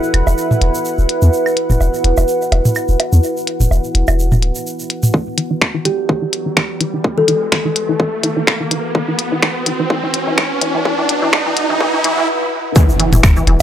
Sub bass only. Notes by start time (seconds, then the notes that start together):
0.14 E1
0.27 E1
0.62 E1
0.98 E1
1.22 E2
1.70 E1
1.81 E1
2.04 E1
2.17 E1
2.52 E1
2.89 E1
3.13 E2
3.60 E1
3.71 E1
3.95 E1
4.08 E1
4.43 D1
13.13 E1
13.23 E1
13.47 E1